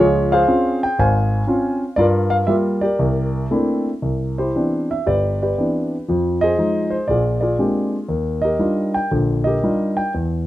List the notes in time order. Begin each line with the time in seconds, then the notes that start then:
0.00 C#2 F3 F4 G#4 C#5
0.32 G#4 C5 F5
0.48 C4 C#4 F4
0.83 G5
0.99 G#1 C5 F5 G#5
1.47 C4 C#4 F4
1.96 G2 F4 A#4 D5
2.30 F5
2.47 G3 A#3 F4 E5
2.81 G4 A#4 D5
2.99 C2
3.51 A3 A#3 C4 D4 E4
4.02 C2
4.38 E4 G4 C5
4.55 E3 B3 C4 D4
4.91 E5
5.06 G1 G4 B4 D5
5.42 G4 B4 D5
5.58 E3 B3 C4 D4
6.08 F2 F3
6.41 G#4 C5 D#5
6.58 F3 G#3 D#4
6.90 C5
7.08 A#1 F4 G#4 D5
7.41 F4 G#4 D5
7.59 G#3 A#3 C4 D4 G4
8.09 D#2
8.42 G4 A#4 D#5
8.59 G3 D4 D#4 F4
8.94 G5
9.11 A#1 D3
9.44 G4 A#4 D#5
9.63 G3 D4 D#4 F4
9.97 G5
10.14 E2